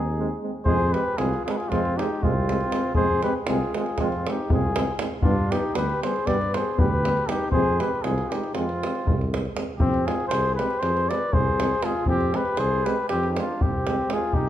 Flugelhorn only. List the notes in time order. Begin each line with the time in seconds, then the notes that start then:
Already playing: D#4
0.66 G#4
0.93 G4
1.18 F4
1.45 F4
1.51 G4
1.58 F4
1.69 C4
1.97 D#4
2.23 C4
2.94 G#4
3.23 G4
3.46 F4
3.75 F4
4.00 C4
4.29 D#4
4.53 F4
5.23 D4
5.52 D#4
5.76 G4
6.05 G#4
6.28 B4
6.57 G#4
6.80 G4
7.29 D#4
7.53 G#4
7.83 G4
8.05 F4
8.32 D#4
8.56 C4
9.81 C4
10.07 F4
10.31 G#4
10.59 G4
10.82 G#4
11.12 B4
11.33 G#4
11.83 F4
12.07 C4
12.34 G4
12.59 G#4
12.86 G4
13.10 C4
13.31 D#4
13.38 D4
13.62 C4
14.13 F4
14.34 D#4